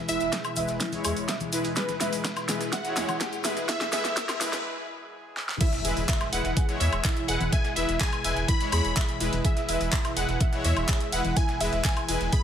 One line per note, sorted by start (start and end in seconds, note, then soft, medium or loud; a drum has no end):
0.00 5.57 B2 medium
0.00 5.57 E3 medium
0.00 5.57 G#3 medium
0.00 5.57 E4 medium
0.00 5.57 G#4 medium
0.00 riser medium
0.09 0.17 E1 medium
0.09 0.15 G#3 medium
0.09 0.19 E4 medium
0.09 0.15 E4 medium
0.09 0.15 B4 medium
0.09 0.77 E5 loud
0.09 snare soft
0.09 open hi-hat loud
0.09 tambourine medium
0.09 cabasa medium
0.20 0.29 E1 medium
0.20 snare soft
0.20 closed hi-hat soft
0.20 cabasa soft
0.32 0.37 G#4 medium
0.32 kick loud
0.32 snare loud
0.32 snare medium
0.32 closed hi-hat medium
0.32 tambourine medium
0.32 cabasa soft
0.44 closed hi-hat soft
0.44 cabasa soft
0.44 high woodblock medium
0.56 0.65 E1 medium
0.56 0.63 G#3 medium
0.56 0.63 E4 medium
0.56 0.63 B4 medium
0.56 0.67 E5 medium
0.56 open hi-hat loud
0.56 tambourine medium
0.56 high conga medium
0.56 cabasa loud
0.68 0.77 E1 medium
0.68 snare soft
0.68 closed hi-hat soft
0.68 cabasa soft
0.80 0.92 E4 medium
0.80 kick loud
0.80 snare medium
0.80 closed hi-hat medium
0.80 tambourine medium
0.80 cabasa medium
0.92 1.02 G#3 medium
0.92 1.02 E4 medium
0.92 1.02 C#5 medium
0.92 closed hi-hat soft
0.92 high conga medium
0.92 cabasa soft
1.04 1.13 E2 loud
1.04 1.11 G#3 medium
1.04 1.11 E4 medium
1.04 1.09 G#4 medium
1.04 1.11 C#5 medium
1.04 open hi-hat loud
1.04 tambourine medium
1.04 cabasa medium
1.04 high woodblock medium
1.17 1.25 E1 medium
1.17 open hi-hat medium
1.17 cabasa soft
1.28 1.40 E5 medium
1.28 kick loud
1.28 snare loud
1.28 snare medium
1.28 closed hi-hat medium
1.28 tambourine medium
1.28 cabasa medium
1.40 closed hi-hat soft
1.40 high conga medium
1.40 cabasa soft
1.53 1.61 E1 medium
1.53 1.59 G#3 medium
1.53 1.59 E4 medium
1.53 1.64 E4 medium
1.53 1.59 B4 loud
1.53 snare soft
1.53 open hi-hat loud
1.53 tambourine medium
1.53 cabasa loud
1.64 1.73 E1 medium
1.64 closed hi-hat soft
1.64 cabasa soft
1.76 1.81 G#4 medium
1.76 2.45 B4 loud
1.76 kick loud
1.76 snare medium
1.76 closed hi-hat medium
1.76 tambourine medium
1.76 cabasa medium
1.89 snare medium
1.89 closed hi-hat soft
1.89 high conga medium
1.89 cabasa soft
2.01 2.09 E1 medium
2.01 2.07 G#3 medium
2.01 2.07 E4 medium
2.01 2.07 B4 medium
2.01 2.11 E5 medium
2.01 snare medium
2.01 open hi-hat loud
2.01 tambourine medium
2.01 cabasa loud
2.13 2.21 E1 medium
2.13 snare soft
2.13 open hi-hat medium
2.13 cabasa soft
2.24 2.36 E4 medium
2.24 kick loud
2.24 snare medium
2.24 snare loud
2.24 closed hi-hat medium
2.24 tambourine medium
2.24 cabasa medium
2.37 snare medium
2.37 closed hi-hat soft
2.37 cabasa soft
2.37 high woodblock medium
2.49 2.57 E1 medium
2.49 2.55 G#3 medium
2.49 2.55 E4 medium
2.49 2.53 G#4 medium
2.49 2.55 B4 medium
2.49 snare medium
2.49 open hi-hat loud
2.49 tambourine medium
2.49 high conga medium
2.49 cabasa medium
2.61 2.69 E1 medium
2.61 snare medium
2.61 closed hi-hat soft
2.61 cabasa soft
2.73 2.84 E5 medium
2.73 3.41 F#5 loud
2.73 kick loud
2.73 snare medium
2.73 closed hi-hat medium
2.73 tambourine medium
2.73 cabasa soft
2.84 2.94 G#3 medium
2.84 2.94 E4 medium
2.84 2.94 C#5 medium
2.84 snare soft
2.84 closed hi-hat soft
2.84 cabasa soft
2.96 3.05 E2 loud
2.96 3.03 G#3 medium
2.96 3.08 E4 medium
2.96 3.03 E4 medium
2.96 3.03 C#5 loud
2.96 snare medium
2.96 snare loud
2.96 open hi-hat loud
2.96 tambourine medium
2.96 cowbell medium
2.96 cabasa medium
3.09 3.17 E1 medium
3.09 closed hi-hat soft
3.09 high conga loud
3.09 cabasa soft
3.09 high woodblock medium
3.20 3.25 G#4 medium
3.20 kick loud
3.20 snare medium
3.20 snare loud
3.20 closed hi-hat medium
3.20 tambourine medium
3.20 cabasa medium
3.33 closed hi-hat soft
3.33 cabasa soft
3.44 3.53 E1 loud
3.44 3.51 G#3 medium
3.44 3.51 E4 medium
3.44 3.51 B4 loud
3.44 3.56 E5 medium
3.44 snare medium
3.44 open hi-hat loud
3.44 tambourine medium
3.44 cabasa medium
3.57 3.65 E1 medium
3.57 snare medium
3.57 closed hi-hat soft
3.57 cabasa soft
3.68 3.80 E4 medium
3.68 3.91 E5 loud
3.68 kick loud
3.68 snare medium
3.68 closed hi-hat medium
3.68 tambourine medium
3.68 cabasa soft
3.80 snare medium
3.80 closed hi-hat soft
3.80 tambourine medium
3.80 high conga medium
3.80 cabasa soft
3.92 4.01 E1 medium
3.92 3.99 G#3 medium
3.92 3.99 E4 medium
3.92 3.97 G#4 medium
3.92 3.99 B4 medium
3.92 4.61 E5 loud
3.92 snare soft
3.92 snare medium
3.92 open hi-hat loud
3.92 cabasa medium
4.04 4.13 E1 medium
4.04 snare medium
4.04 closed hi-hat soft
4.04 tambourine medium
4.04 cabasa soft
4.17 4.28 E5 medium
4.17 kick loud
4.17 snare loud
4.17 closed hi-hat medium
4.17 tambourine medium
4.17 cabasa medium
4.29 snare soft
4.29 snare medium
4.29 closed hi-hat soft
4.29 cabasa soft
4.29 high woodblock medium
4.40 4.49 E1 medium
4.40 4.47 G#3 medium
4.40 4.47 E4 medium
4.40 4.52 E4 medium
4.40 4.47 B4 medium
4.40 snare loud
4.40 open hi-hat loud
4.40 tambourine medium
4.40 high conga medium
4.40 cabasa medium
4.53 4.61 E1 medium
4.53 snare soft
4.53 snare medium
4.53 closed hi-hat soft
4.53 cabasa soft
5.37 snare medium
5.49 snare medium
5.61 12.43 B2 medium
5.61 12.43 E3 medium
5.61 12.43 G#3 medium
5.61 12.43 E4 medium
5.61 5.72 E4 medium
5.61 12.43 G#4 medium
5.61 6.34 E5 medium
5.61 kick loud
5.61 closed hi-hat loud
5.61 crash loud
5.61 tambourine medium
5.61 impact medium
5.73 snare medium
5.73 closed hi-hat soft
5.85 5.93 E1 medium
5.85 5.91 G#3 medium
5.85 5.91 E4 medium
5.85 5.89 G#4 medium
5.85 5.91 B4 loud
5.85 open hi-hat loud
5.85 tambourine medium
5.97 6.05 E1 medium
5.97 snare soft
5.97 open hi-hat medium
6.09 6.19 E5 medium
6.09 kick loud
6.09 snare loud
6.09 clap loud
6.09 closed hi-hat medium
6.09 tambourine medium
6.21 snare medium
6.21 closed hi-hat soft
6.21 high woodblock medium
6.33 6.41 E1 medium
6.33 6.39 G#3 medium
6.33 6.39 E4 medium
6.33 6.43 E4 medium
6.33 6.39 B4 medium
6.33 6.82 F#5 loud
6.33 open hi-hat loud
6.33 tambourine medium
6.45 6.53 E1 medium
6.45 snare medium
6.45 closed hi-hat soft
6.57 6.61 G#4 medium
6.57 kick loud
6.57 closed hi-hat loud
6.57 tambourine medium
6.69 6.78 G#3 medium
6.69 6.78 E4 medium
6.69 6.78 C#5 medium
6.69 snare medium
6.69 closed hi-hat soft
6.80 6.89 E2 loud
6.80 6.87 G#3 medium
6.80 6.87 E4 medium
6.80 6.87 C#5 loud
6.80 7.28 E5 loud
6.80 6.91 E5 medium
6.80 open hi-hat loud
6.80 tambourine medium
6.80 cowbell medium
6.93 7.01 E1 medium
6.93 closed hi-hat soft
6.93 high woodblock medium
7.05 7.15 E4 medium
7.05 kick loud
7.05 snare loud
7.05 clap loud
7.05 closed hi-hat medium
7.05 tambourine medium
7.17 closed hi-hat soft
7.28 7.37 E1 medium
7.28 7.35 G#3 medium
7.28 7.35 E4 medium
7.28 7.33 G#4 medium
7.28 7.35 B4 loud
7.28 7.51 F#5 medium
7.28 open hi-hat loud
7.28 tambourine medium
7.40 7.49 E1 medium
7.40 closed hi-hat soft
7.40 high conga medium
7.52 7.63 E5 medium
7.52 7.78 G#5 loud
7.52 kick loud
7.52 closed hi-hat medium
7.52 tambourine medium
7.65 snare medium
7.65 closed hi-hat soft
7.76 7.85 E1 medium
7.76 7.83 G#3 medium
7.76 7.87 E4 medium
7.76 7.83 E4 medium
7.76 7.83 B4 medium
7.76 8.02 E5 loud
7.76 snare soft
7.76 open hi-hat loud
7.76 tambourine medium
7.89 7.97 E1 medium
7.89 snare medium
7.89 closed hi-hat soft
8.01 8.05 G#4 medium
8.01 8.24 G#5 loud
8.01 kick loud
8.01 snare loud
8.01 clap loud
8.01 closed hi-hat medium
8.01 tambourine medium
8.13 closed hi-hat soft
8.13 high woodblock medium
8.24 8.33 E1 medium
8.24 8.31 G#3 medium
8.24 8.31 E4 medium
8.24 8.31 B4 medium
8.24 8.35 E5 medium
8.24 8.50 G#5 loud
8.24 open hi-hat loud
8.24 tambourine medium
8.37 8.45 E1 medium
8.37 snare soft
8.37 closed hi-hat soft
8.48 8.59 E4 medium
8.48 8.72 B5 loud
8.48 kick loud
8.48 closed hi-hat medium
8.48 tambourine medium
8.61 8.70 G#3 medium
8.61 8.70 E4 medium
8.61 8.70 C#5 loud
8.61 closed hi-hat soft
8.72 8.81 E2 loud
8.72 8.79 G#3 medium
8.72 8.79 E4 medium
8.72 8.77 G#4 medium
8.72 8.79 C#5 loud
8.72 9.17 B5 loud
8.72 open hi-hat loud
8.72 tambourine medium
8.72 high woodblock medium
8.85 8.93 E1 medium
8.85 open hi-hat medium
8.96 9.07 E5 medium
8.96 kick loud
8.96 snare loud
8.96 clap loud
8.96 closed hi-hat medium
8.96 tambourine medium
9.09 closed hi-hat soft
9.20 9.29 E1 medium
9.20 9.27 G#3 medium
9.20 9.27 E4 medium
9.20 9.31 E4 medium
9.20 9.27 B4 loud
9.20 snare soft
9.20 open hi-hat loud
9.20 tambourine medium
9.32 9.41 E1 medium
9.32 closed hi-hat soft
9.32 high conga medium
9.45 9.49 G#4 medium
9.45 10.13 E5 loud
9.45 kick loud
9.45 closed hi-hat medium
9.45 tambourine medium
9.57 snare medium
9.57 closed hi-hat soft
9.68 9.77 E1 medium
9.68 9.75 G#3 medium
9.68 9.75 E4 medium
9.68 9.75 B4 medium
9.68 9.79 E5 medium
9.68 open hi-hat loud
9.68 tambourine medium
9.81 9.89 E1 medium
9.81 snare soft
9.81 open hi-hat medium
9.93 10.03 E4 medium
9.93 kick loud
9.93 snare loud
9.93 clap loud
9.93 closed hi-hat medium
9.93 tambourine medium
10.05 snare medium
10.05 closed hi-hat soft
10.05 high woodblock medium
10.17 10.25 E1 medium
10.17 10.23 G#3 medium
10.17 10.23 E4 medium
10.17 10.21 G#4 medium
10.17 10.23 B4 medium
10.17 10.66 F#5 loud
10.17 open hi-hat loud
10.17 tambourine medium
10.29 10.37 E1 medium
10.29 snare medium
10.29 closed hi-hat soft
10.40 10.51 E5 medium
10.40 kick loud
10.40 closed hi-hat medium
10.40 tambourine medium
10.53 10.62 G#3 medium
10.53 10.62 E4 medium
10.53 10.62 C#5 medium
10.53 snare soft
10.53 closed hi-hat soft
10.65 10.73 E2 loud
10.65 10.71 G#3 medium
10.65 10.75 E4 medium
10.65 10.71 E4 medium
10.65 10.71 C#5 loud
10.65 11.14 E5 loud
10.65 open hi-hat loud
10.65 tambourine medium
10.65 cowbell medium
10.77 10.85 E1 medium
10.77 closed hi-hat soft
10.77 high woodblock medium
10.88 10.93 G#4 medium
10.88 kick loud
10.88 snare loud
10.88 clap loud
10.88 closed hi-hat medium
10.88 tambourine medium
11.01 closed hi-hat soft
11.12 11.21 E1 medium
11.12 11.19 G#3 medium
11.12 11.19 E4 medium
11.12 11.19 B4 loud
11.12 11.23 E5 medium
11.12 11.38 F#5 loud
11.12 open hi-hat loud
11.12 tambourine medium
11.24 11.33 E1 medium
11.24 closed hi-hat soft
11.24 high conga medium
11.37 11.48 E4 medium
11.37 11.62 G#5 loud
11.37 kick loud
11.37 closed hi-hat medium
11.37 tambourine medium
11.49 snare medium
11.49 closed hi-hat soft
11.61 11.69 E1 medium
11.61 11.67 G#3 medium
11.61 11.67 E4 medium
11.61 11.65 G#4 medium
11.61 11.67 B4 medium
11.61 11.86 E5 medium
11.61 snare soft
11.61 open hi-hat loud
11.61 tambourine medium
11.73 11.81 E1 medium
11.73 snare soft
11.73 closed hi-hat soft
11.85 11.95 E5 medium
11.85 12.08 G#5 loud
11.85 kick loud
11.85 snare loud
11.85 clap loud
11.85 closed hi-hat medium
11.85 tambourine medium
11.97 closed hi-hat soft
11.97 high woodblock medium
12.09 12.17 E1 medium
12.09 12.15 G#3 medium
12.09 12.19 E4 medium
12.09 12.15 E4 medium
12.09 12.15 B4 medium
12.09 12.35 G#5 loud
12.09 open hi-hat loud
12.09 tambourine medium
12.21 12.29 E1 medium
12.21 snare soft
12.21 closed hi-hat soft
12.32 12.37 G#4 medium
12.32 12.43 B5 loud
12.32 kick loud
12.32 closed hi-hat medium
12.32 tambourine medium